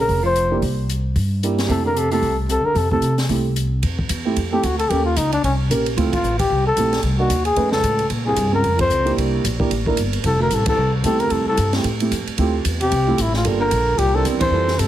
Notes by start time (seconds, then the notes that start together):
Already playing: C#3
0.00 A#4
0.08 F1, kick, open hi-hat
0.23 F3 C5
0.36 closed hi-hat
0.51 A#3 D4 E4 G4
0.62 C2, kick, open hi-hat
0.89 closed hi-hat
1.16 G2, kick, open hi-hat
1.43 A#3 D4 E4 G4, closed hi-hat
1.58 snare, open hi-hat
1.67 F2 C3 A3 C4 E4 G4 A4, kick, open hi-hat
1.83 D3 A#4
1.95 C3 A4, closed hi-hat
2.11 C3 A3 C4 E4 G4 A4, open hi-hat
2.22 C2, kick, open hi-hat
2.48 C3 A4, closed hi-hat
2.63 D3 A#4, muted upright bass stroke
2.75 F2 C3 A4, kick, open hi-hat
2.90 C3 A3 C4 E4 G4 A4, kick
3.01 C3, closed hi-hat
3.18 snare, open hi-hat
3.29 C2 A3 C4 E4 G4, kick, open hi-hat
3.56 closed hi-hat
3.83 F2, kick, ride
3.99 kick
4.09 E2, kick, hi-hat pedal, ride
4.25 A3 C4 E4 G4
4.36 F2, kick, ride
4.52 A3 C4 E4 G4 A4
4.63 D2 F#4, kick, hi-hat pedal, ride
4.79 A4, ride
4.89 D#2 A#3 C#4 G4 A4, kick, ride
5.05 F4
5.16 C#2 D#4, kick, hi-hat pedal, ride
5.32 D4, ride
5.43 C2 C#4, kick, ride
5.70 A#1 A#3 C#4 G4 A#4, kick, hi-hat pedal, ride
5.86 ride
5.97 D2 A3 C4 E4 F4, kick, ride
6.06 C2
6.13 A1 F4, kick, ride
6.23 A1, hi-hat pedal
6.39 G4, kick, ride
6.50 C2, kick
6.66 A4
6.76 A#1 A3 C4 E4 G4, kick, hi-hat pedal, ride
6.93 snare, ride
7.03 C2, kick, ride
7.19 A#3 D4 D#4 F#4
7.29 D#2, kick, hi-hat pedal, ride
7.45 G#4, ride
7.56 F2 A3 C#4 D#4 B4, kick, ride
7.71 C#2 A4, snare
7.83 A2, kick, hi-hat pedal, ride
7.99 ride
8.10 A#2, kick, ride
8.26 C2 G#4
8.36 G2, kick, hi-hat pedal, ride
8.52 C#2 C4 C#4 F4 G#4 A#4
8.63 F2, kick, ride
8.76 F2, kick, ride
8.81 C5
8.89 C#2, hi-hat pedal
9.05 A#3 D4 E4 G4, ride
9.17 C2, kick, ride
9.44 A#1, kick, hi-hat pedal, ride
9.59 A#3 D4 E4 G4, kick
9.70 A1, kick, ride
9.86 A#3 D4 E4 A#4, kick
9.97 G1, kick, hi-hat pedal, ride
10.13 ride
10.23 F1 C2 A4, kick, ride
10.39 D2 A#4
10.50 A1 C2 A4, kick, hi-hat pedal, ride
10.66 C2 A4, kick, ride
10.76 C2
11.03 C2 E2 A3 C4 E4 G4 A4, kick, hi-hat pedal, ride
11.20 D2 A#4, ride
11.30 C2 F2 A4, kick, ride
11.45 C2 A4, muted upright bass stroke
11.57 G2, kick, hi-hat pedal, ride
11.73 A3 C4 E4 G4, snare, ride
11.84 A2, kick, ride
12.00 A3 C4 E4 G4, ride
12.11 F2, kick, hi-hat pedal, ride
12.26 muted upright bass stroke, ride
12.38 D2 A3 C4 E4 F4 G4, kick, ride
12.65 E2, kick, hi-hat pedal, ride
12.79 C3 G4, ride
12.92 C2, kick, ride
13.08 A3 C4 E4 F4 G4
13.18 A1 G2 E4, kick, hi-hat pedal, ride
13.34 A2 F4, snare
13.45 G1 G3 A#3 D4 F4 A4, kick, ride
13.59 D3 A#4
13.71 A#1, kick, hi-hat pedal, ride
13.96 C2 A#2 G4, kick, ride
14.14 C3 G3 C4 D4 E4 A4 A#4
14.25 E2, kick, hi-hat pedal, ride
14.39 E3 C5, kick, ride
14.51 F2 G3 C4 E4 F4 A4
14.68 snare
14.77 G2 C3 A4, kick, hi-hat pedal, ride